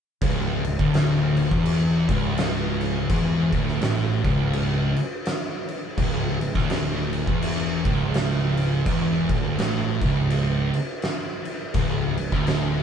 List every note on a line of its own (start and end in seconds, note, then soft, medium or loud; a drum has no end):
0.21 0.62 C#1 loud
0.21 0.64 C#2 loud
0.21 kick loud
0.21 crash medium
0.64 0.78 C#1 medium
0.64 0.80 C#2 medium
0.64 crash medium
0.79 1.47 D1 medium
0.79 1.51 D2 medium
0.79 kick loud
0.94 snare loud
0.94 crash medium
1.37 crash medium
1.51 2.05 E1 medium
1.51 2.08 E2 medium
1.51 kick loud
1.65 crash medium
2.09 3.06 C#1 medium
2.09 3.09 C#2 loud
2.09 kick loud
2.09 crash medium
2.37 snare loud
2.37 crash medium
2.81 crash medium
3.09 3.50 E1 loud
3.09 3.52 E2 loud
3.09 kick loud
3.09 crash medium
3.52 3.80 D1 loud
3.52 3.81 D2 loud
3.52 kick loud
3.52 crash medium
3.68 snare soft
3.81 4.22 A1 medium
3.81 4.24 A2 medium
3.81 snare loud
3.81 crash medium
4.24 4.93 C#1 loud
4.24 4.95 C#2 loud
4.24 kick loud
4.24 crash medium
4.53 crash medium
4.96 crash medium
5.25 snare loud
5.25 crash medium
5.68 crash medium
5.97 6.38 C#1 loud
5.97 6.40 C#2 loud
5.97 kick loud
5.97 crash medium
6.41 6.55 C#1 medium
6.41 6.55 C#2 medium
6.41 crash medium
6.55 7.24 D1 medium
6.55 7.27 D2 loud
6.55 kick loud
6.55 snare soft
6.70 snare loud
6.70 crash medium
7.13 crash medium
7.27 7.81 E1 medium
7.27 7.84 E2 medium
7.27 kick loud
7.42 crash loud
7.85 8.82 C#1 loud
7.85 8.86 C#2 loud
7.85 kick loud
7.85 crash medium
8.14 snare loud
8.14 crash medium
8.57 crash medium
8.86 9.26 E1 loud
8.86 9.29 E2 loud
8.86 kick loud
8.86 crash medium
9.29 9.56 D1 loud
9.29 9.58 D2 loud
9.29 kick loud
9.29 crash medium
9.58 9.98 A1 medium
9.58 10.00 A2 loud
9.58 snare loud
9.58 crash medium
10.01 10.70 C#1 loud
10.01 10.73 C#2 loud
10.01 kick loud
10.01 crash medium
10.30 crash medium
10.74 crash medium
11.02 snare loud
11.02 crash medium
11.45 crash medium
11.74 12.14 C#1 loud
11.74 12.16 C#2 loud
11.74 kick loud
11.74 crash medium
12.17 12.31 C#1 medium
12.17 12.32 C#2 medium
12.17 crash medium
12.32 12.83 D1 loud
12.32 12.83 D2 medium
12.32 kick loud
12.32 snare soft
12.47 snare loud
12.47 crash medium